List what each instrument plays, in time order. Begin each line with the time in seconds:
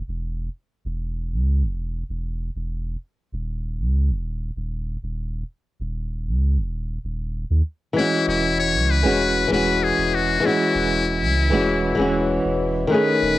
0.08 sub bass E1
0.85 sub bass E1
1.32 sub bass C#2
1.62 sub bass E1
2.09 sub bass E1
2.55 sub bass E1
3.32 sub bass D#1
3.79 sub bass C#2
4.10 sub bass D#1
4.56 sub bass D#1
5.02 sub bass D#1
5.80 sub bass D#1
6.26 sub bass C#2
6.57 sub bass D#1
7.04 sub bass D#1
7.50 sub bass D#2
7.93 nylon-string guitar E3 G#3
7.97 nylon-string guitar C#4 F#4, muted trumpet E4
8.27 sub bass E1, muted trumpet E4
8.59 muted trumpet C#5
8.74 sub bass C#2
8.90 muted trumpet B4
9.03 sub bass E1, nylon-string guitar E3 G#3 C#4 F#4
9.48 sub bass E1, nylon-string guitar E3 G#3
9.52 nylon-string guitar C#4 F#4, muted trumpet B4
9.84 muted trumpet G#4
9.98 sub bass E1
10.15 muted trumpet F#4
10.40 nylon-string guitar E3 G#3
10.45 nylon-string guitar C#4 F#4, muted trumpet E4
10.75 sub bass E1
11.21 sub bass C#2
11.50 sub bass E1, nylon-string guitar E3 G#3 C#4 F#4
11.95 sub bass E1, nylon-string guitar E3 G#3
11.99 nylon-string guitar C#4 F#4
12.44 sub bass E1
12.87 nylon-string guitar D#3 A3
12.92 nylon-string guitar C#4 G#4, muted trumpet B4
13.22 sub bass D#1